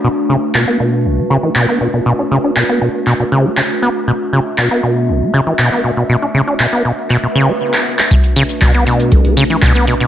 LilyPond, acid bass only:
\new Staff \with { instrumentName = "Acid bass" } { \clef bass \time 4/4 \key b \minor \tempo 4 = 119 b,16 r16 cis16 r16 b,16 b16 b,8 b,,16 b16 cis16 e16 b,16 b16 b,16 b,16 | b,16 d'16 cis16 d'16 b,16 b16 b,16 r16 b,16 b,16 cis16 b16 cis16 r16 b16 r16 | b,16 r16 cis16 r16 b,16 b16 b,8 b,,16 b16 cis16 e16 b,16 b16 b,16 b,16 | b,16 d'16 cis16 d'16 b,16 b16 b,16 r16 b,16 b,16 cis16 b16 r4 |
b,16 r16 cis16 r16 b,16 b16 b,8 b,,16 b16 cis16 e16 b,16 b16 b,16 b,16 | }